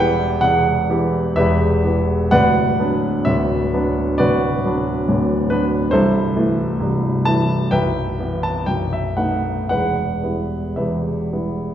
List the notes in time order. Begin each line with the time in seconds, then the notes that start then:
Already playing: E1 E2 E3 B3 E4 G4 B4 D5 E5 F#5 G5
0.41 E1 E2 F#5
0.90 E3 B3 G4
1.36 E1 E2 G4 B4 E5
1.84 E3 B3 G4
2.31 D1 D2 B4 D5 F#5
2.79 F#3 B3 D4
3.25 D1 D2 E5
3.73 F#3 B3 D4
4.18 D1 D2 F#4 B4 D5
4.65 F#3 B3 D4
5.08 D1 D2
5.50 F#3 B3 D4 B4
5.91 C1 C2 E4 A4 C5
6.36 E3 A3 E4
6.80 C1 C2
7.25 E3 A3 E4 A5
7.71 B0 B1 B4 E5 G5
8.19 E3 B3 E4
8.43 A5
8.66 B0 B1 G5
8.93 E5
9.17 A3 B3 D#4 F#5
9.69 E1 E2 B4 F#5
10.23 G3 B3 E4
10.76 E1 E2 G4 B4 E5
11.32 G3 B3 E4